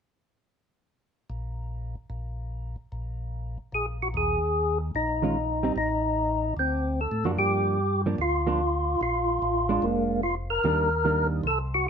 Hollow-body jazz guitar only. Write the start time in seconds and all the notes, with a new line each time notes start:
5.22 D#3 G#3 C#4 F4
5.63 G3 C4 D#4
7.25 F3 A#3 D4
8.06 F3 A#3 D4
8.47 F3 A#3 D4
9.69 G#3 D4
10.64 D#3 G3 A#3 D4
11.05 D#3 G3 A#3 D4